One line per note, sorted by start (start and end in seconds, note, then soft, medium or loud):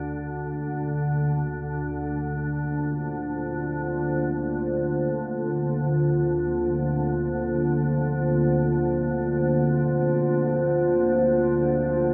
0.00 12.14 D2 medium
0.00 12.14 D3 medium
0.00 4.03 D4 medium
0.00 4.29 A4 medium
0.00 4.80 D5 medium
0.19 12.14 A#3 medium
2.55 12.14 F4 medium
2.62 12.14 C5 medium